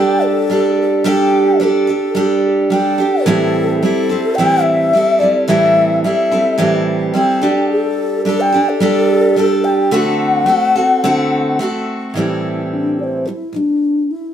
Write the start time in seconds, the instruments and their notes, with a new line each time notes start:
Already playing: steel-string acoustic guitar G3 D4 G4 A4
0.00 ocarina G5
0.25 ocarina A4
0.50 steel-string acoustic guitar G3 D4 G4 A4
0.82 ocarina A4
1.04 steel-string acoustic guitar G3 D4 G4 A4, ocarina G5
1.60 steel-string acoustic guitar G3 D4 G4 A4
1.64 ocarina A4
1.87 steel-string acoustic guitar D4 G4 A4
2.15 steel-string acoustic guitar G3 D4 G4 A4
2.70 steel-string acoustic guitar G3 D4 G4 A4, ocarina G5
2.98 steel-string acoustic guitar D4 G4 A4
3.25 steel-string acoustic guitar A2 E3 G3 C4 E4 A4, ocarina A4
3.82 steel-string acoustic guitar G3 C4 E4 A4, ocarina A4
4.09 steel-string acoustic guitar G3 C4 E4 A4
4.35 steel-string acoustic guitar A2 E3, ocarina G5
4.39 steel-string acoustic guitar G3 C4 E4 A4
4.63 ocarina E5
4.93 steel-string acoustic guitar G3 C4 E4 A4
5.19 steel-string acoustic guitar C4 E4 A4, ocarina D5
5.23 steel-string acoustic guitar G3
5.47 steel-string acoustic guitar A2 E3 G3 C4 E4 A4, ocarina E5
6.03 steel-string acoustic guitar G3 C4 E4 A4, ocarina E5
6.31 steel-string acoustic guitar G3 C4 E4 A4
6.58 steel-string acoustic guitar A2 E3 G3 C4 E4 A4
7.14 steel-string acoustic guitar G3 C4 E4 A4, ocarina G5
7.41 steel-string acoustic guitar G3 D4 G4 A4
7.71 ocarina A4
8.25 steel-string acoustic guitar G3 D4 G4 A4, ocarina A4
8.41 ocarina G5
8.52 steel-string acoustic guitar D4 G4 A4
8.69 ocarina A4
8.80 steel-string acoustic guitar G3 D4 G4 A4
9.36 steel-string acoustic guitar G3 D4 G4 A4
9.64 ocarina G5
9.91 steel-string acoustic guitar D3 A3 C4 F#4 A4, ocarina F#5
10.46 steel-string acoustic guitar A3 C4 F#4 A4
10.76 steel-string acoustic guitar C4 F#4 A4
11.04 steel-string acoustic guitar D3 A3 C4 F#4 A4
11.59 steel-string acoustic guitar A3 C4 F#4 A4
12.14 steel-string acoustic guitar A2 E3 G3 C4, ocarina E4
12.18 steel-string acoustic guitar E4 A4
12.73 ocarina D4
12.99 ocarina D5
13.04 ocarina C5
13.26 steel-string acoustic guitar A2 E3 G3, ocarina E4
13.53 steel-string acoustic guitar A2 E3 G3, ocarina D4
14.11 ocarina E4